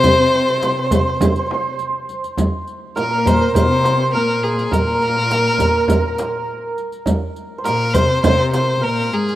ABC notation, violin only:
X:1
M:4/4
L:1/8
Q:1/4=102
K:none
V:1 name="Violin"
c6 z2 | z2 _B c c2 B _A | _B6 z2 | z2 _B c c c B _A |]